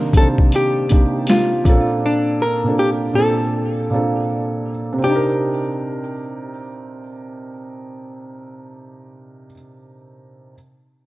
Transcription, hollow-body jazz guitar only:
Already playing: A#4
0.17 A4
0.56 G4
1.30 F4
2.06 D4
2.42 A#4
2.79 G4
3.15 A4
5.04 G4

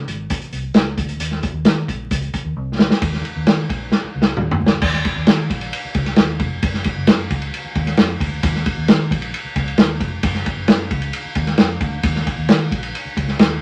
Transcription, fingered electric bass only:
0.07 G#1
0.41 muted fingered electric bass stroke
0.52 C2
0.98 D2
1.19 D#2
1.53 D#2
1.65 D#3
1.89 A#1
2.11 C#2
2.45 D#2
2.57 C2
2.79 D2
3.02 D#2
3.36 D#2
3.47 D#3
3.69 A#1
4.04 muted fingered electric bass stroke
4.15 C#2
4.38 D#2
4.60 D2
4.82 D#2
5.16 D#2
5.50 A#1
5.85 muted fingered electric bass stroke
5.95 C#2
6.18 D#2
6.39 F1
6.63 F#1
6.97 F#1
7.08 F#2
7.30 C#2
7.65 muted fingered electric bass stroke
7.76 D#2
7.98 F2
8.20 D2
8.43 D#2
8.77 D#2
8.88 D#3
9.11 A#1
9.45 muted fingered electric bass stroke
9.56 C#2
9.78 D#2
10.00 F1
10.23 F#1
10.56 F#1
10.67 F#2
10.91 C#2
11.25 muted fingered electric bass stroke
11.36 D#2
11.58 F2
11.81 D2
12.04 D#2
12.38 D#2
12.49 D#3
12.71 A#1
13.05 muted fingered electric bass stroke
13.16 C#2
13.39 D#2

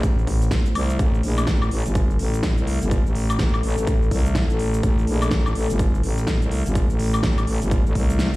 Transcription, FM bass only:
0.03 A1
0.75 C2
0.99 A1
1.23 A#1
1.47 A1
1.71 A1
1.86 G1
2.19 A1
2.58 C2
2.82 G1
3.06 A1
3.39 A1
3.63 A1
3.78 A1
4.11 C2
4.50 A1
4.83 A1
5.07 A#1
5.31 A1
5.55 A1
5.70 G1
6.03 A1
6.42 C2
6.66 G1
6.90 A1
7.23 A1
7.47 A1
7.62 G1
7.86 A1
7.95 C2

